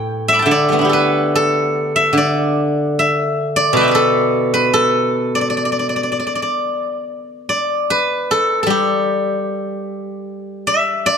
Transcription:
guzheng
Already playing: A2 G4 A4 B4 G5
0.28 E5
0.33 B5 D6
0.39 G5 A5
0.46 D3 E5
0.51 D5
0.69 G3 A3
0.73 B3
0.79 D4 E4
0.85 G4
0.89 A4 B4
1.35 A4
1.96 E5
2.13 D3
2.18 D5
2.99 E5
3.56 D5
3.73 B2 B4
3.77 G5 A5 B5
3.83 E5
3.88 B4 D5
3.95 A4
4.54 B4
4.74 A4
5.35 D5
5.41 D5
5.50 D5
5.57 D5
5.65 D5
5.72 D5
5.79 D5
5.89 D5
5.96 D5
6.03 D5
6.12 D5
6.20 D5
6.27 D5
6.35 D5
6.42 D5
7.49 D5
7.90 B4
8.31 A4
8.63 G3 A4
8.70 G4
10.67 E5
11.06 D5

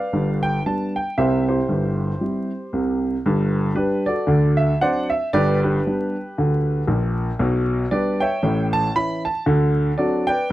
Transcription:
grand piano
Already playing: B4 D5 F5
0.13 G1 G2
0.43 G5
0.66 G3 B3 D4 A5
0.96 G5
1.17 C2 C3 G4 C5 E5
1.49 E4 G4 C5
1.69 G1 G2
2.21 G3 C4 E4
2.73 C2 C3
3.26 G1 G2
3.75 G3 D4 G4 B4
4.06 F#4 A4 D5
4.27 D2 D3
4.57 E5
4.81 F#3 C4 D4 C5 D5 F#5
5.10 E5
5.33 G1 G2 G4 B4 D5
5.63 D4 G4 B4
5.87 G3 B3 D4
6.38 D2 D3
6.87 A#1 A#2
7.39 B1 B2
7.91 G3 B3 D4 G4 B4 D5
8.20 C#5 E5 G5
8.43 A1 A2
8.73 A5
8.96 E3 C#4 E4 B5
9.25 A5
9.46 D2 D3
9.98 F#3 C4 D4 F#4 A4 D5
10.27 B4 D5 G5

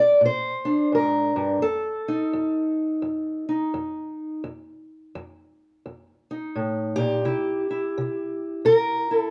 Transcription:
steel-string acoustic guitar
Already playing: A#2
0.00 D5
0.21 A#2
0.26 C5
0.65 D4
0.92 G#2 A#4
1.36 G2
1.62 F2 A4
2.08 D#4
2.33 F2
3.02 F2
3.49 D#4
3.74 F2
4.44 F2
5.15 F2
5.86 F2
6.31 D#4
6.55 A2
6.96 A#2 G4
7.25 C3 E4
7.70 E4
7.98 C3
8.65 C3 A#4
9.11 E4 A4

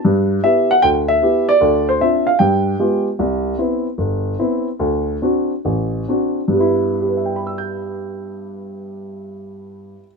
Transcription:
grand piano
0.05 G2
0.44 B3 E4 G4 E5
0.71 F#5
0.82 D2 G5
1.08 E5
1.22 B3 E4 G4
1.49 D5
1.61 D2
1.89 C5
2.00 C4 D4 F4 E5
2.27 F5
2.39 G2 G5
2.79 G#3 B3 F4 G4
3.19 C2
3.58 B3 C4 E4
3.98 G1
4.39 B3 C4 E4
4.79 D2
5.22 C4 D4 F#4
5.65 A1
6.08 C4 D4 F#4
6.48 G2
6.52 G3 B3
6.60 E4
7.02 G4
7.09 B4
7.17 E5
7.26 G5
7.36 B5
7.47 E6
7.58 G6

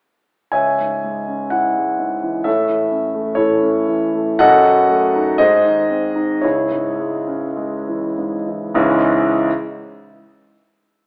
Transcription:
grand piano
0.52 C#2 C#5 E5 G#5
0.80 G#2
1.04 G#3
1.28 C#4
1.51 E4 F#5
1.77 G#3
1.99 G#2
2.22 E3
2.44 A2 A4 C#5 E5
2.68 E3
2.91 C#4
3.14 A3
3.35 E3 E4 A4 C#5
3.61 C#4
3.87 E3
4.14 A3
4.39 F#2 A4 D#5 F#5
4.64 F#3
4.89 A3
5.16 D#4
5.38 G#2 G#4 C5 D#5
5.65 D#3
5.91 C4
6.16 D#4
6.42 C#2 E4 G#4 C#5
6.72 G#2
6.99 G#3
7.27 C#4
7.57 G#3
7.88 E3
8.18 G#2
8.47 E3
8.74 C#2 G#2 E3 G#3 C#4 E4

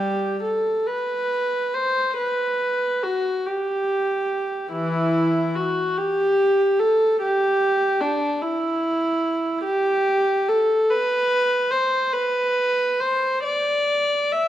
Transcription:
viola
Already playing: G3 G4
0.43 A4
0.88 B4
1.74 C5
2.18 B4
3.03 F#4
3.46 G4
4.72 E3 E4
5.55 F#4
5.98 G4
6.80 A4
7.22 G4
8.01 D4
8.42 E4
9.64 G4
10.48 A4
10.90 B4
11.71 C5
12.13 B4
13.00 C5
13.44 D5
14.32 E5

